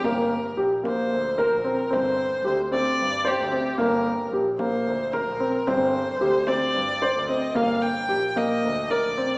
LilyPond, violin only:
\new Staff \with { instrumentName = "Violin" } { \time 7/8 \key g \minor \tempo 4 = 112 bes'4 r8 c''4 bes'4 | c''4 c''8 d''4 g'4 | bes'4 r8 c''4 bes'4 | c''4. d''4. ees''8 |
f''8 g''4 ees''4 d''4 | }